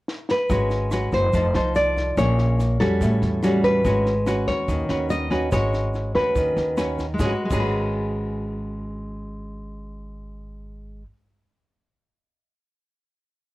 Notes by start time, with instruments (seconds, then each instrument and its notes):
0.08 snare
0.29 nylon-string guitar B4, snare
0.50 upright bass G#1, nylon-string guitar G#3 C#4 F#4 B4, kick, snare, shaker
0.71 snare, shaker
0.91 nylon-string guitar C#4 F#4 B4, cross-stick, snare, shaker
1.12 upright bass F#1, nylon-string guitar C5, kick, snare, shaker
1.33 upright bass F1, nylon-string guitar F3 D#4 A4 C5, kick, snare, shaker
1.54 upright bass C2, nylon-string guitar D#4 A4 C5, cross-stick, snare, shaker
1.75 nylon-string guitar D5, snare, shaker
1.96 kick, snare, shaker
2.17 upright bass A#1, nylon-string guitar A#3 C#4 G#4 C#5, kick, cross-stick, snare, shaker
2.38 snare, shaker
2.59 snare, shaker
2.80 upright bass F2, nylon-string guitar G3 C#4 F#4 A4, kick, cross-stick, snare, shaker
3.01 upright bass A1, nylon-string guitar A2, kick, snare, shaker
3.22 upright bass E2, snare, shaker
3.43 nylon-string guitar G3 C#4 F#4, cross-stick, snare, shaker
3.64 nylon-string guitar B4, kick, snare, shaker
3.85 upright bass G#1, nylon-string guitar G#3 C#4 F#4 B4, kick, snare, shaker
4.06 snare, shaker
4.26 nylon-string guitar C#4 F#4 B4, cross-stick, snare, shaker
4.47 upright bass D#2, nylon-string guitar C#5, kick, snare, shaker
4.68 upright bass D#2, nylon-string guitar D#3, kick, snare, shaker
4.89 upright bass D#2, nylon-string guitar C#4 F#4 B4, cross-stick, snare, shaker
5.10 nylon-string guitar D#5, snare, shaker
5.30 nylon-string guitar C#4 F#4 B4, kick, snare, shaker
5.52 upright bass G#1, nylon-string guitar G#3 C#4 F#4 B4 C#5, kick, cross-stick, snare, shaker
5.73 snare, shaker
5.94 snare, shaker
6.15 upright bass D#2, nylon-string guitar C#4 F#4 B4, kick, cross-stick, snare, shaker
6.35 upright bass D#2, nylon-string guitar D#3, kick, snare, shaker
6.56 upright bass D#2, snare, shaker
6.77 nylon-string guitar C#4 F#4 B4, cross-stick, snare, shaker
6.98 kick, snare, shaker
7.14 nylon-string guitar G#3
7.19 upright bass G#1, nylon-string guitar C#4 G#4, kick, snare, shaker
7.25 nylon-string guitar F#4
7.29 nylon-string guitar B4
7.45 nylon-string guitar G#3
7.51 upright bass G#1, nylon-string guitar C#4 G#4, kick, crash, shaker
7.56 nylon-string guitar F#4 B4